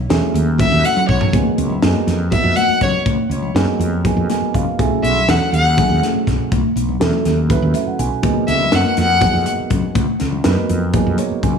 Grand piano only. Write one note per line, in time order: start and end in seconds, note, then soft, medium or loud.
0.09 0.44 F#3 medium
0.09 0.45 A3 medium
0.09 0.45 C#4 medium
0.09 0.45 E4 medium
0.09 0.45 G#4 medium
0.59 1.29 F#3 medium
0.59 1.29 A3 medium
0.59 1.29 C#4 medium
0.59 1.29 E4 medium
0.59 1.29 F#4 medium
1.33 1.73 F#3 medium
1.33 1.73 A#3 medium
1.33 1.73 B3 medium
1.33 1.73 D#4 medium
1.33 1.73 G#4 medium
1.82 2.17 F#3 medium
1.82 2.17 A#3 medium
1.82 2.17 B3 medium
1.82 2.17 D#4 medium
1.82 2.18 G#4 medium
2.31 3.01 F#3 medium
2.31 3.01 A#3 medium
2.31 3.02 B3 medium
2.31 3.02 D#4 medium
2.31 3.02 F#4 medium
3.55 3.90 F#3 medium
3.55 3.90 A#3 medium
3.55 3.90 B3 medium
3.55 3.90 D#4 medium
3.55 3.91 G#4 medium
4.04 4.74 F#3 medium
4.04 4.74 A#3 medium
4.04 4.74 B3 medium
4.04 4.75 D#4 medium
4.04 4.75 G#4 medium
4.31 4.53 G#5 medium
4.54 4.77 F5 medium
4.78 5.18 F#3 medium
4.78 5.18 A3 medium
4.78 5.18 C#4 medium
4.78 5.19 E4 medium
4.78 5.19 G#4 loud
5.29 5.63 F#3 medium
5.29 5.63 A3 medium
5.29 5.63 C#4 medium
5.29 5.63 E4 medium
5.29 5.64 A4 medium
5.77 6.47 F#3 medium
5.77 6.47 A3 medium
5.77 6.47 C#4 medium
5.77 6.47 E4 medium
5.77 6.48 G#4 medium
7.00 7.35 F#3 medium
7.00 7.35 A3 medium
7.00 7.35 C#4 medium
7.00 7.35 E4 medium
7.00 7.36 A4 medium
7.49 8.19 F#3 medium
7.49 8.19 A3 medium
7.49 8.19 C#4 medium
7.49 8.20 E4 medium
7.49 8.20 B4 medium
7.74 7.86 E5 medium
7.87 7.98 F#5 medium
7.99 8.22 G#5 medium
8.23 8.62 F#3 medium
8.23 8.63 A#3 medium
8.23 8.63 B3 medium
8.23 8.63 D#4 medium
8.23 8.63 G#4 medium
8.72 9.07 F#3 medium
8.72 9.07 A#3 medium
8.72 9.07 B3 medium
8.72 9.07 D#4 medium
8.72 9.08 A#4 medium
9.21 9.91 F#3 medium
9.21 9.91 A#3 medium
9.21 9.91 B3 medium
9.21 9.91 D#4 medium
9.21 9.91 G#4 medium
10.44 10.79 F#3 medium
10.44 10.79 B3 medium
10.44 10.80 D#4 medium
10.44 10.79 A#4 medium
10.44 10.80 B4 medium
10.93 11.59 F#3 medium
10.93 11.59 A#3 medium
10.93 11.59 B3 medium
10.93 11.59 D#4 medium
10.93 11.59 G#4 medium
11.19 11.42 C#5 medium
11.43 11.59 G#5 medium